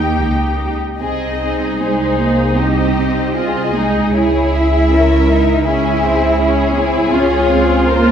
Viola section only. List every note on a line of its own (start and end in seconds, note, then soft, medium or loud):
0.00 0.77 D#4 soft
1.00 3.30 D#4 soft
3.34 3.74 F4 soft
3.74 4.15 D#4 soft
4.15 5.66 E4 soft
5.66 6.03 C#4 soft
6.03 6.39 C4 soft
6.39 6.75 C#4 soft
6.76 7.13 E4 medium
7.12 8.12 F4 medium